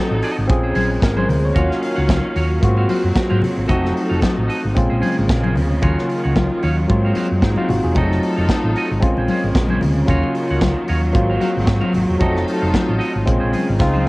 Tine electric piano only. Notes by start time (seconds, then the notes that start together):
Already playing: C4 D#4 F#4 A4
0.47 C4 C#4 F4 G#4
1.03 A#4
1.18 C5
1.45 C#5
1.56 A#3 C#4 F4 F#4
2.61 A#3 B3 F4 F#4
2.68 C4
3.68 A3 C4 D#4 F#4
4.74 G#3 C4 C#4 F4
5.81 F#3 A#3 C#4 F4
6.88 F#3 A#3 C4 F4
7.42 D#4
7.57 F4
7.69 F#4
7.84 G#4
7.94 F#3 A3 C4 D#4
8.99 G#3 C4 C#4 F4
10.06 F#3 A#3 C#4 F4
11.13 F#3 A#3 C4 F4
12.19 F#3 A3 C4 D#4
13.26 G#3 C4 C#4 F4
13.80 G#3 C4 D#4 F4